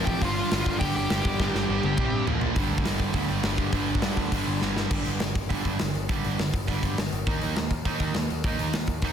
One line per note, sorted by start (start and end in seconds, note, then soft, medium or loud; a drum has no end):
0.00 0.21 F2 loud
0.00 0.21 C3 loud
0.00 0.21 F3 loud
0.05 0.17 A1 loud
0.05 0.21 G4 medium
0.05 0.22 G5 loud
0.05 kick medium
0.22 0.42 G1 loud
0.22 0.52 G2 loud
0.22 0.51 D3 loud
0.22 0.51 G3 loud
0.22 0.78 F4 medium
0.22 0.79 F5 loud
0.22 kick loud
0.22 open hi-hat medium
0.51 0.61 G1 loud
0.51 0.80 G2 medium
0.51 0.80 D3 medium
0.51 0.81 G3 loud
0.51 snare loud
0.51 open hi-hat medium
0.66 0.76 G1 medium
0.66 kick medium
0.79 0.91 G1 medium
0.79 1.09 G2 medium
0.79 1.09 D3 loud
0.79 1.09 G3 loud
0.79 0.95 G4 medium
0.79 0.94 G5 loud
0.79 kick loud
0.79 open hi-hat medium
0.95 1.05 G1 medium
0.95 2.25 G4 medium
0.95 2.24 G5 loud
1.10 1.20 G1 medium
1.10 1.39 G2 medium
1.10 1.39 D3 loud
1.10 1.40 G3 loud
1.10 snare loud
1.10 open hi-hat medium
1.25 1.35 G1 medium
1.25 kick medium
1.40 1.50 G1 loud
1.40 1.68 G2 loud
1.40 1.68 D3 loud
1.40 1.67 G3 loud
1.40 kick loud
1.40 snare medium
1.54 1.64 G1 medium
1.54 snare medium
1.69 1.79 G1 medium
1.69 1.97 G2 medium
1.69 1.97 D3 medium
1.69 1.97 G3 loud
1.83 1.94 G1 medium
1.83 high tom medium
1.97 2.08 C2 medium
1.97 2.26 C3 medium
1.97 2.27 G3 loud
1.97 2.27 C4 loud
1.97 kick loud
1.97 mid tom loud
2.12 2.22 G2 medium
2.26 2.37 A#1 medium
2.26 2.55 A#2 loud
2.26 2.56 F3 medium
2.26 2.56 A#3 loud
2.26 floor tom loud
2.41 2.51 A#1 medium
2.41 floor tom loud
2.56 2.68 G1 medium
2.56 2.86 G2 medium
2.56 2.85 D3 loud
2.56 2.85 G3 loud
2.56 kick loud
2.56 open hi-hat medium
2.70 2.82 D2 medium
2.78 kick medium
2.85 3.09 G1 medium
2.85 3.14 G2 medium
2.85 3.14 D3 medium
2.85 3.15 G3 loud
2.85 snare loud
2.85 open hi-hat medium
3.00 kick medium
3.13 3.27 D2 medium
3.13 3.44 G2 loud
3.13 3.42 D3 medium
3.13 3.43 G3 loud
3.13 kick loud
3.13 open hi-hat medium
3.29 3.41 G1 medium
3.43 3.55 G1 medium
3.43 3.72 G2 medium
3.43 3.72 D3 medium
3.43 3.73 G3 loud
3.43 snare loud
3.43 open hi-hat medium
3.58 3.71 G1 medium
3.58 3.72 G2 medium
3.58 3.72 D3 medium
3.58 3.75 G3 medium
3.58 kick medium
3.72 3.85 G1 loud
3.72 4.02 G2 medium
3.72 4.01 D3 loud
3.72 4.00 G3 loud
3.72 kick medium
3.72 open hi-hat medium
3.89 4.00 G1 medium
3.95 kick medium
4.02 4.30 G2 medium
4.02 4.15 G2 medium
4.02 4.31 D3 loud
4.02 4.31 G3 loud
4.02 snare loud
4.02 open hi-hat medium
4.17 4.29 D2 medium
4.17 kick medium
4.31 4.44 G1 medium
4.31 4.61 G2 medium
4.31 4.61 D3 loud
4.31 4.60 G3 loud
4.31 kick loud
4.31 open hi-hat medium
4.48 4.59 G1 medium
4.61 4.86 G1 medium
4.61 4.90 G2 medium
4.61 4.91 D3 medium
4.61 4.91 G3 loud
4.61 snare medium
4.76 4.92 G2 medium
4.76 4.91 D3 medium
4.76 4.90 G3 medium
4.76 snare medium
4.91 5.02 G1 medium
4.91 5.20 G2 medium
4.91 5.20 D3 medium
4.91 5.20 G3 loud
4.91 kick loud
4.91 crash medium
5.05 5.17 G1 medium
5.05 open hi-hat medium
5.20 5.32 G1 medium
5.20 5.34 G2 medium
5.20 5.34 D3 medium
5.20 snare loud
5.20 open hi-hat medium
5.35 5.47 G1 medium
5.35 kick medium
5.35 open hi-hat soft
5.50 5.61 G1 medium
5.50 5.79 G2 medium
5.50 5.80 D3 medium
5.50 5.80 G3 medium
5.50 kick medium
5.50 open hi-hat medium
5.65 5.76 G1 medium
5.65 kick medium
5.65 open hi-hat soft
5.79 5.92 G1 medium
5.79 5.93 G2 medium
5.79 5.94 D3 medium
5.79 snare loud
5.79 open hi-hat medium
5.95 6.06 G1 medium
5.95 open hi-hat soft
6.09 6.38 G2 medium
6.09 6.38 D3 medium
6.09 6.39 G3 medium
6.09 kick loud
6.09 open hi-hat medium
6.24 6.36 G1 medium
6.24 open hi-hat soft
6.38 6.50 G1 medium
6.38 6.52 G2 medium
6.38 6.53 D3 medium
6.38 snare loud
6.38 open hi-hat medium
6.53 6.65 G1 medium
6.53 kick medium
6.53 open hi-hat medium
6.68 6.79 G1 medium
6.68 6.97 G2 medium
6.68 6.97 D3 medium
6.68 6.98 G3 loud
6.68 kick medium
6.68 open hi-hat medium
6.83 6.94 G1 medium
6.83 kick medium
6.83 open hi-hat medium
6.98 7.09 G1 medium
6.98 7.12 G2 medium
6.98 7.12 D3 medium
6.98 snare loud
6.98 open hi-hat medium
7.11 7.23 G1 medium
7.11 open hi-hat medium
7.27 7.39 D#2 medium
7.27 7.55 D#3 medium
7.27 7.56 A#3 medium
7.27 7.57 D#4 loud
7.27 kick loud
7.27 open hi-hat medium
7.42 7.53 D#2 medium
7.42 open hi-hat medium
7.56 7.67 D#2 medium
7.56 7.70 D#3 medium
7.56 7.70 A#3 medium
7.56 snare loud
7.56 open hi-hat medium
7.70 7.82 D#2 medium
7.70 kick medium
7.70 open hi-hat medium
7.85 7.97 D#2 medium
7.85 8.14 D#3 medium
7.85 8.15 A#3 medium
7.85 8.15 D#4 medium
7.85 kick medium
7.85 open hi-hat medium
8.00 8.12 D#2 medium
8.00 kick medium
8.00 open hi-hat medium
8.14 8.27 D#2 medium
8.14 8.29 D#3 medium
8.14 8.29 A#3 medium
8.14 snare loud
8.14 open hi-hat medium
8.30 8.42 D#2 medium
8.30 open hi-hat soft
8.44 8.56 D#2 medium
8.44 8.73 D#3 medium
8.44 8.73 A#3 medium
8.44 8.74 D#4 loud
8.44 kick loud
8.44 open hi-hat medium
8.59 8.71 D#2 medium
8.59 open hi-hat medium
8.73 8.85 D#2 medium
8.73 8.87 D#3 medium
8.73 8.88 A#3 medium
8.73 snare loud
8.73 open hi-hat medium
8.87 8.99 D#2 medium
8.87 kick medium
8.87 open hi-hat medium
9.02 9.12 D#2 medium
9.02 9.12 D#3 medium
9.02 9.12 A#3 medium
9.02 9.12 D#4 loud
9.02 kick medium
9.02 open hi-hat medium